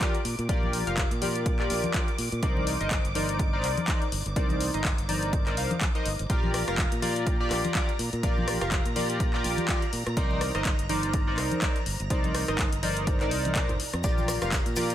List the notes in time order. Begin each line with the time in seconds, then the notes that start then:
Already playing: D6
0.00 F4 G4 A#4 D5, kick, clap, closed hi-hat
0.15 closed hi-hat
0.25 A#2, open hi-hat
0.39 A#2, closed hi-hat
0.49 A#1 F4 G4 A#4 D5, kick, closed hi-hat
0.63 high conga
0.73 open hi-hat
0.87 F1 F4 G4 A#4 F5, closed hi-hat
0.97 kick, clap, closed hi-hat
1.11 A#2, closed hi-hat
1.21 F4 G4 A#4 D5, open hi-hat, high conga
1.35 closed hi-hat
1.46 kick, closed hi-hat
1.59 F4 G4 A#4 D5, clap
1.70 A#1, open hi-hat
1.84 closed hi-hat, high conga
1.94 F4 G4 A#4 D5, kick, clap, closed hi-hat
2.08 closed hi-hat
2.18 A#2, open hi-hat
2.32 A#2, closed hi-hat
2.42 C2 D#4 A#4 C5 D5, kick, closed hi-hat
2.57 high conga
2.67 open hi-hat
2.80 G1 D#4 A#4 C5 D#5, closed hi-hat
2.91 kick, clap, closed hi-hat
3.05 G1, closed hi-hat
3.15 D#4 A#4 C5 D5, open hi-hat, high conga
3.29 closed hi-hat
3.39 kick, closed hi-hat
3.53 D#4 A#4 C5 D5
3.64 C2, clap, open hi-hat
3.77 closed hi-hat, high conga
3.88 D#4 A#4 C5 D5, kick, clap, closed hi-hat
4.02 closed hi-hat
4.12 G1, open hi-hat
4.26 G1, closed hi-hat
4.36 C2 D#4 A#4 C5 D5, kick, closed hi-hat
4.49 closed hi-hat, high conga
4.61 open hi-hat
4.74 G1 D#4 A#4 C5 D#5, closed hi-hat
4.85 kick, clap, closed hi-hat
4.98 G1, closed hi-hat
5.09 D#4 A#4 C5 D5, open hi-hat, high conga
5.23 closed hi-hat
5.33 kick, closed hi-hat
5.47 D#4 A#4 C5 D5, clap, closed hi-hat
5.57 C2 D#4 A#4 C5 F5, open hi-hat
5.71 closed hi-hat, high conga
5.81 kick, clap, closed hi-hat
5.95 D#4 A#4 C5 D#5, closed hi-hat
6.06 G1, open hi-hat
6.19 G1, closed hi-hat
6.30 A#1 F4 G4 A#4 D5 A#5, kick, closed hi-hat
6.44 high conga
6.54 cross-stick, open hi-hat
6.67 F1 F4 G4 A#4 F5, cross-stick, closed hi-hat
6.78 kick, clap, closed hi-hat
6.92 A#2, closed hi-hat
7.02 F4 G4 A#4 D5, open hi-hat, high conga
7.16 closed hi-hat
7.27 kick, closed hi-hat
7.40 F4 G4 A#4 D5
7.51 A#1, cross-stick, clap, open hi-hat
7.65 closed hi-hat, high conga
7.75 F4 G4 A#4 D5, kick, clap, closed hi-hat
7.89 closed hi-hat
7.99 A#2, open hi-hat
8.13 A#2, closed hi-hat
8.23 A#1 F4 G4 A#4 D5, kick, closed hi-hat
8.38 high conga
8.48 cross-stick, open hi-hat
8.61 F1 F4 G4 A#4 F5, cross-stick, closed hi-hat
8.72 kick, clap, closed hi-hat
8.86 A#2, closed hi-hat
8.96 F4 G4 A#4 D5, open hi-hat, high conga
9.10 closed hi-hat
9.20 kick, closed hi-hat
9.34 F4 G4 A#4 D5, clap
9.44 A#1, open hi-hat
9.57 closed hi-hat, high conga
9.68 F4 G4 A#4 D5, kick, clap, closed hi-hat
9.82 closed hi-hat
9.93 A#2, open hi-hat
10.07 A#2, cross-stick, closed hi-hat
10.17 C2 D#4 A#4 C5 D5, kick, closed hi-hat
10.31 high conga
10.41 cross-stick, open hi-hat
10.55 G1 D#4 A#4 C5 D#5, cross-stick, closed hi-hat
10.65 kick, clap, closed hi-hat
10.79 G1, closed hi-hat
10.89 D#4 A#4 C5 D5, open hi-hat, high conga
11.03 closed hi-hat
11.14 kick, closed hi-hat
11.27 D#4 A#4 C5 D5
11.38 C2, cross-stick, clap, open hi-hat
11.51 closed hi-hat, high conga
11.62 D#4 A#4 C5 D5, kick, clap, closed hi-hat
11.76 closed hi-hat
11.86 G1, open hi-hat
12.00 G1, closed hi-hat
12.10 C2 D#4 A#4 C5 D5, kick, closed hi-hat
12.24 closed hi-hat, high conga
12.35 cross-stick, open hi-hat
12.48 G1 D#4 A#4 C5 D#5, cross-stick, closed hi-hat
12.59 kick, clap, closed hi-hat
12.73 G1, closed hi-hat
12.83 D#4 A#4 C5 D5, open hi-hat, high conga
12.97 closed hi-hat
13.07 kick, closed hi-hat
13.21 D#4 A#4 C5 D5, clap, closed hi-hat
13.31 C2, open hi-hat
13.45 closed hi-hat, high conga
13.55 D#4 A#4 C5 D5, kick, clap, closed hi-hat
13.69 G1, closed hi-hat, low conga
13.80 open hi-hat
13.93 F2, cross-stick, closed hi-hat
14.04 A#1 F4 G4 A#4 D5 A#5, kick, closed hi-hat, maracas
14.18 high conga, maracas
14.28 cross-stick, open hi-hat, maracas
14.41 F1 F4 G4 A#4 F5, cross-stick, closed hi-hat, maracas
14.52 kick, clap, closed hi-hat, maracas
14.66 A#2, closed hi-hat, maracas
14.76 F4 G4 A#4 D5, open hi-hat, high conga, maracas
14.90 closed hi-hat, maracas